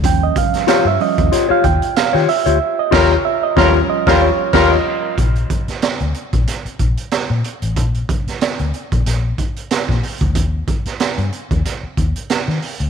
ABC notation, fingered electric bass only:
X:1
M:4/4
L:1/16
Q:"Swing 16ths" 1/4=93
K:Eb
V:1 name="Fingered electric bass" clef=bass
E,,2 z3 G,, z E,, z2 E,, z2 E, z D,, | z2 E,,2 z2 E,,2 z E,,2 z E,,2 z2 | B,,,2 z3 D,, z B,,, z2 B,,, z2 B,, z =A,,, | B,,,2 z3 D,, z B,,, B,,,2 z3 B,, z D,, |
E,,2 z3 G,, z E,, z2 E,, z2 E, z D,, |]